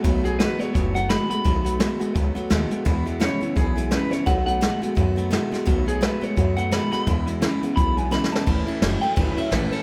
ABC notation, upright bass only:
X:1
M:4/4
L:1/8
Q:"Swing" 1/4=171
K:Bmix
V:1 name="Upright bass" clef=bass
B,,,3 z F,,,3 z | B,,,3 z C,, z D,, z | E,,3 z B,,,3 z | B,,,3 z F,,3 z |
B,,,3 z F,,3 z | E,,3 z B,,,3 z | A,,, z F,,, z G,,, z A,,, z |]